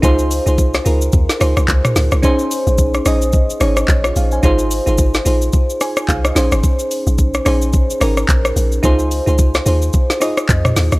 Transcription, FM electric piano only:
0.02 0.37 D#4 loud
0.02 0.37 F4 loud
0.02 0.37 G#4 loud
0.02 0.38 C5 loud
0.46 0.79 D#4 medium
0.46 0.79 F4 medium
0.46 0.79 G#4 medium
0.46 0.80 C5 loud
0.85 1.31 D#4 medium
0.85 1.31 F4 medium
0.85 1.32 G#4 medium
0.85 1.32 A#4 medium
1.40 2.08 D#4 medium
1.40 2.09 F4 medium
1.40 2.09 G#4 medium
1.40 2.09 C5 loud
2.22 2.91 C#4 loud
2.22 2.91 D#4 loud
2.22 2.92 G#4 loud
2.22 2.92 C5 loud
3.05 3.51 C#4 medium
3.05 3.52 D#4 medium
3.05 3.52 G#4 medium
3.05 3.53 D#5 loud
3.60 4.28 C#4 medium
3.60 4.29 D#4 medium
3.60 3.89 G#4 medium
3.60 3.89 C#5 loud
4.05 4.16 F4 medium
4.05 4.16 C#5 medium
4.17 4.32 G#4 medium
4.17 4.32 F5 medium
4.33 4.44 C5 medium
4.33 4.58 G#5 medium
4.43 4.77 D#4 loud
4.43 4.78 F4 loud
4.43 4.78 G#4 loud
4.43 4.78 C5 loud
4.86 5.19 D#4 medium
4.86 5.19 F4 medium
4.86 5.19 G#4 medium
4.86 5.20 C5 loud
5.25 5.71 D#4 medium
5.25 5.72 F4 medium
5.25 5.72 G#4 medium
5.25 5.73 C5 medium
5.81 6.08 C5 medium
5.81 6.07 G#5 medium
6.09 6.24 G#4 medium
6.09 6.24 F5 medium
6.25 6.51 D#5 medium
6.35 7.25 C#4 medium
6.35 7.25 D#4 medium
6.35 7.25 G#4 medium
6.35 7.26 C5 loud
7.45 7.92 C#4 loud
7.45 7.92 D#4 medium
7.45 7.92 G#4 medium
7.45 7.93 C5 loud
8.00 8.69 C#4 medium
8.00 8.69 D#4 medium
8.00 8.69 G#4 medium
8.00 8.70 A#4 loud
8.83 9.17 D#4 loud
8.83 9.18 F4 loud
8.83 9.18 G#4 loud
8.83 9.18 C5 loud
9.26 9.59 D#4 medium
9.26 9.59 F4 medium
9.26 9.60 G#4 medium
9.26 9.60 C5 loud
9.66 10.12 D#4 medium
9.66 10.12 F4 medium
9.66 10.13 G#4 medium
9.66 10.13 C5 loud
10.20 10.89 D#4 medium
10.20 10.89 F4 medium
10.20 10.90 G#4 medium
10.20 10.90 D#5 medium

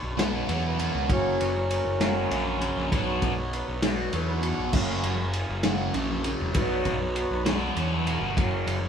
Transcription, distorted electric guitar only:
0.17 0.46 B2 medium
0.17 0.47 F#3 medium
0.17 0.47 B3 medium
0.47 0.79 B2 medium
0.47 0.78 F#3 medium
0.47 0.78 B3 medium
0.79 1.10 B2 medium
0.79 1.10 F#3 medium
0.79 1.10 B3 medium
1.11 1.50 F#2 medium
1.11 1.50 C#3 loud
1.11 1.50 F#3 loud
2.00 2.29 F#2 medium
2.00 2.29 C#3 medium
2.00 2.30 F#3 medium
2.30 2.61 F#2 medium
2.30 2.60 C#3 medium
2.30 2.59 F#3 medium
2.61 2.92 F#2 medium
2.61 2.92 C#3 medium
2.61 2.92 F#3 medium
2.92 3.32 B2 medium
2.92 3.32 F#3 medium
2.92 3.33 B3 medium
3.84 4.13 B2 medium
3.84 4.13 F#3 medium
3.84 4.14 B3 medium
4.14 4.43 B2 medium
4.14 4.42 F#3 medium
4.14 4.42 B3 medium
4.43 4.73 B2 medium
4.43 4.73 F#3 medium
4.43 4.74 B3 medium
4.73 5.13 F#2 medium
4.73 5.13 C#3 medium
4.73 5.14 F#3 loud
5.64 5.92 F#2 medium
5.64 5.93 C#3 medium
5.64 5.94 F#3 medium
5.94 6.25 F#2 medium
5.94 6.24 C#3 medium
5.94 6.23 F#3 medium
6.24 6.56 F#2 medium
6.24 6.53 C#3 medium
6.24 6.53 F#3 medium
6.53 6.94 B2 medium
6.53 6.94 F#3 medium
6.53 6.94 B3 medium
7.46 7.74 B2 medium
7.46 7.74 F#3 loud
7.46 7.75 B3 loud
7.75 8.05 B2 medium
7.75 8.05 F#3 medium
7.75 8.05 B3 medium
8.06 8.37 B2 medium
8.06 8.37 F#3 medium
8.06 8.37 B3 medium
8.37 8.76 F#2 medium
8.37 8.77 C#3 medium
8.37 8.77 F#3 medium

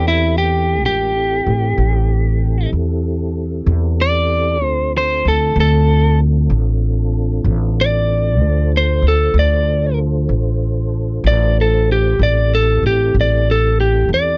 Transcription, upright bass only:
0.00 0.83 E2 medium
0.83 1.42 A1 medium
1.47 1.75 A1 medium
1.78 2.68 A1 medium
2.73 3.63 E2 medium
3.66 4.61 E2 medium
4.61 5.20 D2 loud
5.25 5.54 D2 medium
5.56 6.46 D2 loud
6.50 7.41 A1 medium
7.44 8.39 A1 medium
8.39 8.99 D2 loud
9.02 9.32 D2 medium
9.34 10.25 D2 loud
10.29 11.20 A1 medium
11.24 12.15 A1 medium
12.19 12.78 A1 loud
12.83 13.12 A1 medium
13.14 14.05 A1 medium
14.09 14.38 E2 medium

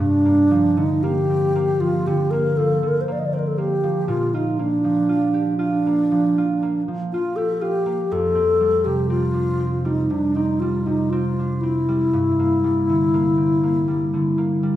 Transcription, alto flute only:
0.00 0.79 D4 loud
0.77 1.05 D#4 medium
1.03 1.82 G4 medium
1.80 2.08 F4 loud
2.07 2.32 G4 medium
2.31 2.59 A#4 medium
2.57 2.90 A4 medium
2.88 3.02 A#4 medium
3.01 3.14 C5 medium
3.12 3.21 D5 medium
3.19 3.27 D#5 medium
3.26 3.35 D5 medium
3.33 3.40 C5 medium
3.39 3.49 A#4 medium
3.48 3.59 A4 medium
3.58 4.08 G4 medium
4.09 4.35 F4 medium
4.34 4.59 D#4 medium
4.57 5.57 D4 medium
5.58 6.82 D4 medium
7.12 7.38 F4 medium
7.36 7.63 A4 medium
7.62 8.14 G4 medium
8.12 8.86 A4 medium
8.84 9.09 G4 medium
9.10 9.87 F4 medium
9.86 10.12 D#4 medium
10.10 10.36 D4 medium
10.35 10.61 D#4 medium
10.60 10.88 F4 medium
10.86 11.11 D#4 medium
11.10 11.62 F4 medium
11.61 14.76 E4 medium

